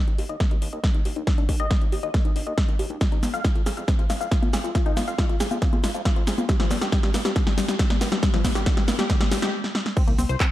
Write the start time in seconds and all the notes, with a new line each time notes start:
0.07 D#2 D#4, closed hi-hat
0.18 D#2 G4, open hi-hat
0.29 D#2 D#5, closed hi-hat
0.40 A#3, kick, snare, closed hi-hat
0.51 D#2 D#4, closed hi-hat
0.62 D#2 D#4, open hi-hat
0.73 D#2 D#5, closed hi-hat
0.84 D#4, kick, snare, closed hi-hat
0.94 D#2 D#4, closed hi-hat
1.05 D#2 G4, open hi-hat
1.16 D#2 D#4, closed hi-hat
1.27 D#4, kick, snare, closed hi-hat
1.38 D#2 D4, closed hi-hat
1.49 D#2 D#4, kick, open hi-hat
1.60 D#2 D#5, closed hi-hat
1.71 D#4, kick, snare, closed hi-hat
1.81 D#2 D#4, closed hi-hat
1.92 D#2 G4, open hi-hat
2.03 D#2 D#5, closed hi-hat
2.14 A#3, kick, snare, closed hi-hat
2.25 D#2 D#4, closed hi-hat
2.36 D#1 D#4, open hi-hat
2.47 D#2 D#5, closed hi-hat
2.57 D#4, kick, snare, closed hi-hat
2.68 D#2 D#4, closed hi-hat
2.79 D#2 G4, open hi-hat
2.90 D#2 D#4, closed hi-hat
3.01 F4, kick, snare, closed hi-hat, shaker
3.12 F2 D#4, closed hi-hat
3.23 F2 F4, snare, open hi-hat, high conga, shaker
3.34 F2 F5, closed hi-hat, shaker
3.44 F4, kick, snare, closed hi-hat, shaker
3.55 F2 F4, closed hi-hat
3.66 F2 G#4, snare, open hi-hat, shaker
3.77 F2 F5, closed hi-hat, shaker
3.88 C4, kick, snare, closed hi-hat, shaker
3.99 F2 F4, closed hi-hat
4.10 F2 F4, snare, open hi-hat, shaker
4.21 F2 F5, closed hi-hat, shaker
4.31 F4, kick, snare, closed hi-hat, shaker
4.42 F2 F4, closed hi-hat, high conga
4.53 F2 G#4, snare, open hi-hat, shaker
4.64 F2 F4, closed hi-hat, shaker
4.75 F4, kick, snare, closed hi-hat, shaker
4.86 F2 D#4, closed hi-hat
4.97 F2 F4, snare, open hi-hat, high conga, shaker
5.08 F2 F5, closed hi-hat, shaker
5.18 F4, kick, snare, closed hi-hat, shaker
5.29 F2 F4, closed hi-hat
5.40 F2 G#4, snare, open hi-hat, shaker
5.51 F2 F5, closed hi-hat, high conga, shaker
5.62 C4, kick, snare, closed hi-hat, shaker
5.73 F2 F4, closed hi-hat, high conga
5.84 F2 F4, snare, open hi-hat, shaker
5.94 F2 F5, closed hi-hat, shaker
6.05 F4, kick, snare, closed hi-hat, shaker
6.16 F2 F4, closed hi-hat
6.27 F2 G#4, snare, open hi-hat, shaker
6.38 F2 F4, closed hi-hat, high conga, shaker
6.49 G3, kick, snare, closed hi-hat, shaker
6.60 G2 F3, snare, closed hi-hat
6.71 G2 G3, snare, open hi-hat, high conga, shaker
6.81 G2 G4, snare, closed hi-hat, shaker
6.92 G3, kick, snare, closed hi-hat, shaker
7.03 G2 G3, snare, closed hi-hat
7.14 G2 B3, snare, open hi-hat, shaker
7.25 G2 G4, snare, shaker
7.36 D3, kick, snare, closed hi-hat, shaker
7.47 G2 G3, snare, closed hi-hat
7.58 G2 G3, snare, open hi-hat, shaker
7.68 G2 G4, snare, closed hi-hat, shaker
7.79 G3, kick, snare, closed hi-hat, shaker
7.90 G2 G3, snare, closed hi-hat, high conga
8.01 G2 B3, snare, open hi-hat, shaker
8.12 G2 G3, snare, closed hi-hat, shaker
8.23 G3, kick, snare, closed hi-hat, shaker
8.33 G2 F3, snare, closed hi-hat
8.44 G2 G3, kick, snare, open hi-hat, high conga, shaker
8.55 G2 G4, snare, closed hi-hat, shaker
8.66 G3, kick, snare, closed hi-hat, shaker
8.77 G2 G3, snare, closed hi-hat
8.88 G2 B3, snare, open hi-hat, shaker
8.99 G2 G4, snare, closed hi-hat, high conga, shaker
9.10 D3, kick, snare, closed hi-hat, shaker
9.21 G2 G3, snare, closed hi-hat, high conga
9.31 G2 G3, snare, open hi-hat, shaker
9.42 G#2 G4, snare, closed hi-hat, shaker
9.64 snare
9.75 snare
9.86 snare
9.97 C4, kick, closed hi-hat, crash, shaker
10.08 C2 A#3, closed hi-hat
10.18 C2 C4, open hi-hat, high conga, shaker
10.29 C2 C5, closed hi-hat, shaker
10.40 C4, kick, clap, closed hi-hat, shaker